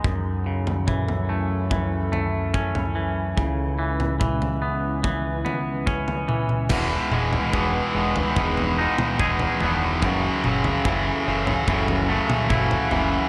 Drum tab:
CC |----------------|----------------|x---------------|----------------|
T2 |----o-----------|----o---------oo|--o--------oo---|--o--------oo---|
FT |o--o-o--o-o--o--|o--o-o--o-o--o--|o--o---ooo-o-oo-|o--o---ooo-o-oo-|
BD |o---o---o---o---|o---o---o---o---|o---o---o---o---|o---o---o---o---|